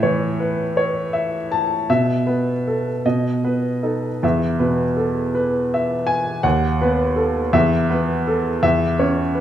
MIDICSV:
0, 0, Header, 1, 2, 480
1, 0, Start_track
1, 0, Tempo, 738916
1, 1219, Time_signature, 6, 3, 24, 8
1, 1219, Tempo, 784314
1, 2659, Tempo, 750939
1, 3619, Tempo, 721154
1, 6064, End_track
2, 0, Start_track
2, 0, Title_t, "Upright piano"
2, 0, Program_c, 0, 0
2, 0, Control_c, 0, 64, 127
2, 0, Note_on_c, 0, 45, 62
2, 0, Note_on_c, 0, 76, 56
2, 18, Note_on_c, 0, 73, 51
2, 22, Note_on_c, 0, 52, 48
2, 156, Note_off_c, 0, 76, 0
2, 259, Note_on_c, 0, 71, 43
2, 396, Note_off_c, 0, 73, 0
2, 398, Note_off_c, 0, 52, 0
2, 495, Note_off_c, 0, 71, 0
2, 500, Note_on_c, 0, 73, 55
2, 735, Note_on_c, 0, 76, 45
2, 881, Note_off_c, 0, 73, 0
2, 985, Note_on_c, 0, 81, 60
2, 1121, Note_off_c, 0, 76, 0
2, 1193, Note_off_c, 0, 45, 0
2, 1224, Note_off_c, 0, 81, 0
2, 1230, Control_c, 0, 64, 0
2, 1230, Note_on_c, 0, 47, 51
2, 1232, Note_on_c, 0, 76, 61
2, 1339, Control_c, 0, 64, 127
2, 1456, Note_on_c, 0, 59, 37
2, 1459, Note_on_c, 0, 71, 41
2, 1605, Note_off_c, 0, 76, 0
2, 1708, Note_on_c, 0, 69, 34
2, 1836, Note_off_c, 0, 59, 0
2, 1837, Note_off_c, 0, 71, 0
2, 1917, Note_off_c, 0, 47, 0
2, 1939, Note_off_c, 0, 69, 0
2, 1940, Note_on_c, 0, 47, 45
2, 1941, Note_on_c, 0, 75, 54
2, 1944, Control_c, 0, 64, 0
2, 2060, Control_c, 0, 64, 127
2, 2175, Note_on_c, 0, 59, 35
2, 2179, Note_on_c, 0, 71, 38
2, 2330, Note_off_c, 0, 75, 0
2, 2414, Note_on_c, 0, 63, 32
2, 2416, Note_on_c, 0, 69, 34
2, 2566, Note_off_c, 0, 59, 0
2, 2568, Note_off_c, 0, 71, 0
2, 2630, Note_off_c, 0, 63, 0
2, 2641, Note_off_c, 0, 47, 0
2, 2655, Note_off_c, 0, 69, 0
2, 2660, Note_on_c, 0, 40, 51
2, 2666, Note_on_c, 0, 76, 44
2, 2671, Control_c, 0, 64, 0
2, 2769, Control_c, 0, 64, 127
2, 2892, Note_on_c, 0, 71, 42
2, 2894, Note_on_c, 0, 47, 37
2, 3045, Note_off_c, 0, 76, 0
2, 3130, Note_on_c, 0, 69, 33
2, 3281, Note_off_c, 0, 71, 0
2, 3282, Note_off_c, 0, 47, 0
2, 3373, Note_on_c, 0, 71, 46
2, 3377, Note_off_c, 0, 69, 0
2, 3624, Note_on_c, 0, 76, 45
2, 3759, Note_off_c, 0, 71, 0
2, 3842, Note_on_c, 0, 80, 61
2, 4001, Note_off_c, 0, 76, 0
2, 4068, Note_off_c, 0, 40, 0
2, 4086, Note_off_c, 0, 80, 0
2, 4086, Note_on_c, 0, 78, 67
2, 4088, Note_on_c, 0, 39, 62
2, 4105, Control_c, 0, 64, 0
2, 4211, Control_c, 0, 64, 127
2, 4340, Note_on_c, 0, 59, 47
2, 4340, Note_on_c, 0, 71, 53
2, 4480, Note_off_c, 0, 78, 0
2, 4571, Note_on_c, 0, 69, 42
2, 4729, Note_off_c, 0, 59, 0
2, 4729, Note_off_c, 0, 71, 0
2, 4798, Note_off_c, 0, 39, 0
2, 4817, Note_on_c, 0, 40, 65
2, 4817, Note_on_c, 0, 76, 71
2, 4818, Note_off_c, 0, 69, 0
2, 4835, Control_c, 0, 64, 0
2, 4931, Control_c, 0, 64, 127
2, 5060, Note_on_c, 0, 59, 48
2, 5065, Note_on_c, 0, 71, 47
2, 5209, Note_off_c, 0, 76, 0
2, 5311, Note_on_c, 0, 69, 45
2, 5452, Note_off_c, 0, 59, 0
2, 5454, Note_off_c, 0, 71, 0
2, 5525, Note_off_c, 0, 40, 0
2, 5546, Note_on_c, 0, 76, 70
2, 5547, Note_on_c, 0, 40, 61
2, 5550, Note_off_c, 0, 69, 0
2, 5561, Control_c, 0, 64, 0
2, 5672, Control_c, 0, 64, 127
2, 5790, Note_on_c, 0, 73, 46
2, 5792, Note_on_c, 0, 61, 45
2, 5923, Note_off_c, 0, 76, 0
2, 6027, Note_on_c, 0, 71, 40
2, 6064, Note_off_c, 0, 40, 0
2, 6064, Note_off_c, 0, 61, 0
2, 6064, Note_off_c, 0, 71, 0
2, 6064, Note_off_c, 0, 73, 0
2, 6064, End_track
0, 0, End_of_file